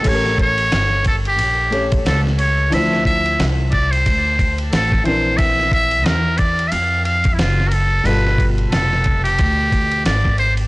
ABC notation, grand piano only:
X:1
M:4/4
L:1/8
Q:"Swing 16ths" 1/4=90
K:Aphr
V:1 name="Grand piano"
[A,^CGAB]4- [A,CGAB] [A,CG^c]3 | [E,F,DEc]6- [E,F,DEc] [E,CDB]- | [E,CDB]6- [E,CDB] z | [=B,,G,FA]8 |]